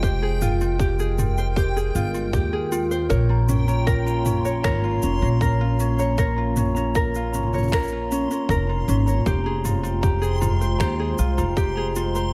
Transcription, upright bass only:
0, 0, Header, 1, 2, 480
1, 0, Start_track
1, 0, Tempo, 769231
1, 21, Time_signature, 4, 2, 24, 8
1, 7694, End_track
2, 0, Start_track
2, 0, Title_t, "Upright bass"
2, 0, Program_c, 0, 32
2, 0, Note_on_c, 0, 29, 82
2, 1213, Note_off_c, 0, 29, 0
2, 1216, Note_on_c, 0, 31, 79
2, 1416, Note_off_c, 0, 31, 0
2, 1457, Note_on_c, 0, 39, 66
2, 1905, Note_off_c, 0, 39, 0
2, 1936, Note_on_c, 0, 34, 85
2, 2864, Note_off_c, 0, 34, 0
2, 2898, Note_on_c, 0, 32, 70
2, 3097, Note_off_c, 0, 32, 0
2, 3138, Note_on_c, 0, 29, 72
2, 3258, Note_on_c, 0, 34, 90
2, 3267, Note_off_c, 0, 29, 0
2, 5145, Note_off_c, 0, 34, 0
2, 5297, Note_on_c, 0, 29, 82
2, 5496, Note_off_c, 0, 29, 0
2, 5541, Note_on_c, 0, 32, 86
2, 5738, Note_off_c, 0, 32, 0
2, 5779, Note_on_c, 0, 29, 89
2, 6706, Note_off_c, 0, 29, 0
2, 6737, Note_on_c, 0, 39, 74
2, 6936, Note_off_c, 0, 39, 0
2, 6981, Note_on_c, 0, 36, 76
2, 7102, Note_on_c, 0, 29, 92
2, 7111, Note_off_c, 0, 36, 0
2, 7694, Note_off_c, 0, 29, 0
2, 7694, End_track
0, 0, End_of_file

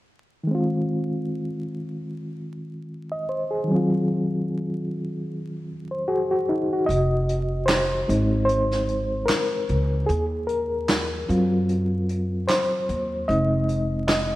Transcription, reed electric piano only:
0, 0, Header, 1, 2, 480
1, 0, Start_track
1, 0, Tempo, 800000
1, 293, Time_signature, 4, 2, 24, 8
1, 8613, End_track
2, 0, Start_track
2, 0, Title_t, "Reed electric piano"
2, 0, Program_c, 0, 4
2, 261, Note_on_c, 0, 51, 66
2, 284, Note_on_c, 0, 56, 59
2, 307, Note_on_c, 0, 60, 59
2, 328, Note_on_c, 0, 65, 69
2, 413, Control_c, 0, 64, 127
2, 1870, Note_on_c, 0, 75, 61
2, 1968, Note_off_c, 0, 75, 0
2, 1974, Note_on_c, 0, 72, 58
2, 2103, Note_off_c, 0, 72, 0
2, 2104, Note_on_c, 0, 68, 64
2, 2173, Note_off_c, 0, 51, 0
2, 2183, Note_on_c, 0, 51, 64
2, 2185, Note_off_c, 0, 56, 0
2, 2196, Note_off_c, 0, 60, 0
2, 2206, Note_on_c, 0, 54, 62
2, 2207, Note_off_c, 0, 65, 0
2, 2221, Control_c, 0, 64, 0
2, 2229, Note_on_c, 0, 60, 61
2, 2252, Note_on_c, 0, 65, 64
2, 2334, Note_off_c, 0, 68, 0
2, 2341, Control_c, 0, 64, 127
2, 3409, Note_off_c, 0, 65, 0
2, 3547, Note_on_c, 0, 72, 53
2, 3614, Note_off_c, 0, 51, 0
2, 3626, Note_off_c, 0, 54, 0
2, 3637, Note_off_c, 0, 60, 0
2, 3647, Note_off_c, 0, 72, 0
2, 3647, Note_on_c, 0, 66, 85
2, 3652, Note_on_c, 0, 68, 64
2, 3780, Note_off_c, 0, 66, 0
2, 3782, Note_off_c, 0, 68, 0
2, 3787, Note_on_c, 0, 66, 61
2, 3887, Note_off_c, 0, 66, 0
2, 3895, Note_on_c, 0, 63, 72
2, 4023, Note_off_c, 0, 63, 0
2, 4038, Note_on_c, 0, 66, 59
2, 4119, Note_on_c, 0, 75, 94
2, 4141, Control_c, 0, 64, 0
2, 4257, Control_c, 0, 64, 127
2, 4262, Note_off_c, 0, 66, 0
2, 4593, Note_on_c, 0, 72, 82
2, 4621, Note_off_c, 0, 75, 0
2, 4847, Note_on_c, 0, 56, 59
2, 4849, Note_on_c, 0, 60, 50
2, 4855, Note_on_c, 0, 63, 59
2, 5062, Note_off_c, 0, 72, 0
2, 5070, Note_on_c, 0, 72, 90
2, 5181, Note_off_c, 0, 56, 0
2, 5182, Note_off_c, 0, 60, 0
2, 5185, Note_off_c, 0, 63, 0
2, 5553, Note_on_c, 0, 70, 83
2, 5576, Note_off_c, 0, 72, 0
2, 6040, Note_on_c, 0, 68, 77
2, 6058, Note_off_c, 0, 70, 0
2, 6060, Control_c, 0, 64, 0
2, 6151, Note_off_c, 0, 68, 0
2, 6166, Control_c, 0, 64, 127
2, 6284, Note_on_c, 0, 70, 84
2, 6744, Note_off_c, 0, 70, 0
2, 6771, Note_on_c, 0, 54, 59
2, 6773, Note_on_c, 0, 60, 51
2, 6778, Note_on_c, 0, 65, 62
2, 7484, Note_on_c, 0, 72, 100
2, 7948, Note_off_c, 0, 54, 0
2, 7949, Note_off_c, 0, 60, 0
2, 7951, Note_off_c, 0, 65, 0
2, 7968, Note_on_c, 0, 75, 101
2, 7972, Note_on_c, 0, 56, 50
2, 7975, Note_on_c, 0, 60, 46
2, 7980, Note_on_c, 0, 63, 59
2, 7981, Control_c, 0, 64, 0
2, 7983, Note_off_c, 0, 72, 0
2, 8071, Control_c, 0, 64, 127
2, 8304, Note_off_c, 0, 56, 0
2, 8306, Note_off_c, 0, 60, 0
2, 8308, Note_off_c, 0, 63, 0
2, 8439, Note_off_c, 0, 75, 0
2, 8446, Note_on_c, 0, 75, 86
2, 8613, Note_off_c, 0, 75, 0
2, 8613, End_track
0, 0, End_of_file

